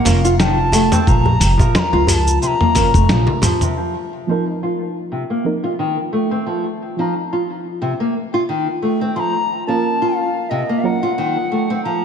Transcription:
0.05 F1 F3 A#3 C#4 F4 A#4 F5, mid tom, open hi-hat, djembe slap, shaker
0.25 F4, shaker
0.39 D#3 A5 A#5, snare, shaker
0.72 A3, open hi-hat, djembe tone, shaker
0.92 C4, mid tom, djembe slap, shaker
1.07 A#1 F3 A#5, kick, shaker
1.25 djembe slap, djembe bass
1.40 F1, open hi-hat, shaker
1.58 A#2 F3 F4, kick, djembe slap, djembe tone, shaker
1.62 A#4
1.75 C6, snare, mid tom, shaker
1.79 A#5
1.93 C#2 F4
2.07 A#5, open hi-hat, djembe bass, shaker
2.13 A5
2.26 djembe tone, shaker
2.42 C3 C6, shaker
2.47 A#5
2.60 A#3, mid tom
2.75 F1 F3 A#3 C#4 F4 A#4, kick, open hi-hat, djembe slap, shaker
2.94 F1 A3, kick, shaker
3.09 A#1 F3, snare, high tom, shaker
3.27 high tom, djembe slap
3.42 F3, mid tom, open hi-hat, djembe tone, shaker
3.61 C3, mid tom, shaker
3.77 F3
4.27 F3 A#3 C4 D#4
4.31 A#4
4.63 F4
5.12 C3
5.30 A#3
5.44 F3 A#3 C4 D#4 A#4
5.64 F4
5.79 D#3
6.13 A3
6.31 C4
6.46 F3
6.97 F3 C4 D#4
7.01 A#5
7.33 F4
7.82 C3
8.00 A#3
8.34 F4
8.49 D#3
8.82 A3
9.01 C4
9.16 F3 C6
9.20 A#5
9.67 F3 A#3 C#4 F4 A#4 A5
10.02 F4
10.16 F5
10.50 C3 D#5
10.69 A#3
10.83 F#3 A#3 C#4 F4 A#4 F#5
11.03 F4
11.18 D#3
11.52 A3
11.70 C4
11.84 F3 A#5

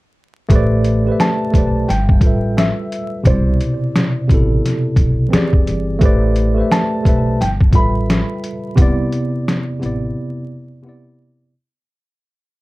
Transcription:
0.49 A1 A3 G4 B4, kick, closed hi-hat
0.54 C5 D5
0.84 closed hi-hat
1.05 A3 G4 B4
1.10 C5 E5
1.20 A5, snare, closed hi-hat
1.51 B1 A3 G4 B4, kick, closed hi-hat
1.56 C5 D5
1.88 G1 G5, snare, closed hi-hat
2.09 kick
2.20 A1 G3 F4 A4, kick, closed hi-hat
2.25 B4 E5
2.57 E5, snare, closed hi-hat
2.92 closed hi-hat
3.24 C2 B2 C3 E4 C5, kick, closed hi-hat
3.30 D5
3.61 closed hi-hat
3.96 snare, closed hi-hat
4.27 A1 B2 C3, kick, closed hi-hat
4.32 E4 A4
4.66 snare, closed hi-hat
4.96 B1, kick, closed hi-hat
5.29 E3 C4 G4
5.33 E2 G#4 D5, snare, closed hi-hat
5.53 kick
5.67 G1, closed hi-hat
5.99 A1 A3 G4 B4, kick, closed hi-hat
6.04 C5 D5
6.36 closed hi-hat
6.54 A3 G4 B4
6.60 C5 E5
6.72 A5, snare, closed hi-hat
7.02 B1 A3 G4 B4, kick, closed hi-hat
7.07 C5 E5
7.41 G1 G5, snare, closed hi-hat
7.61 kick
7.71 A1 G3 F4 A4 B5, kick, closed hi-hat
7.76 B4 E5
8.10 snare, closed hi-hat
8.44 closed hi-hat
8.76 C2 C3 B3, kick, closed hi-hat
8.80 E4 D5
9.12 closed hi-hat
9.48 snare, closed hi-hat
9.79 A1 C3 B3, closed hi-hat
9.83 E4 D5
10.82 C3 B3
10.87 E4 D5

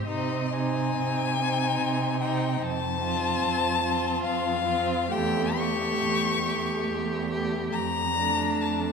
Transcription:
0.06 C3 C4 D#4 D#5
0.52 C4 D#4 G#5
0.98 C3
1.40 C4 D#4
1.81 C3
2.22 C4 D#4 G5
2.61 F2 A5
3.02 C4 F4
3.43 F2
3.83 C4 F4
4.24 F2 F5
4.66 C4 F4
5.10 E2 A3 G4 G5
5.56 A3 G4 C#6
6.03 E2
6.45 A3 G4
6.89 E2
7.30 A3 G4
7.72 F2 A#5
8.18 A3 D4
8.61 F2 A5

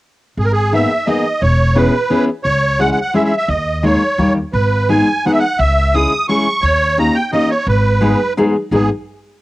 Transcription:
0.37 G#1 G#4
0.45 A#4
0.53 G#4
0.73 A#3 B3 D#4 G#4 E5
1.06 A#3 B3 D#4 G#4 D#5
1.42 E1 C#5
1.75 B3 C#4 E4 G#4 B4
2.10 B3 C#4 E4 G#4
2.44 C#2 C#5
2.79 G#3 C#4 E4 G#4 F#5
2.91 F#5
3.01 F#5
3.14 G#3 C#4 E4 G#4 E5
3.25 E5
3.37 E5
3.48 D#2 D#5
3.83 G#3 A#3 D#4 G#4 C#5
4.18 D#2 G3 A#3 D#4 G4
4.53 G#1 B4
4.89 G#3 B3 D#4 G#4 G#5
5.25 G#3 B3 D#4 G#4 F#5
5.32 E5
5.39 F#5
5.58 C#2 E5
5.94 G#3 C#4 E4 G#4 D#6
6.29 G#3 C#4 E4 G#4 C#6
6.62 D#2 C#5
6.98 A#3 C#4 D#4 G4 A#5
7.15 G5
7.32 A#3 C#4 D#4 G4 D#5
7.50 C#5
7.67 G#1 B4
8.01 G#3 B3 D#4 G#4
8.37 G#3 B3 D#4 G#4
8.71 G#1 G#3 B3 D#4 G#4

